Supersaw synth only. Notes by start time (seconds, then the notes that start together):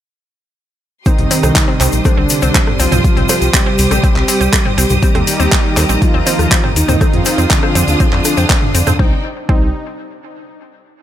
1.06 D#3 D#4
2.05 D3 D4
2.79 F3 F4
3.54 G3 G4
5.03 G3 G4
6.02 F3 F4
6.76 D#3 D#4
7.51 D3 D4
8.99 D#4
9.49 D#4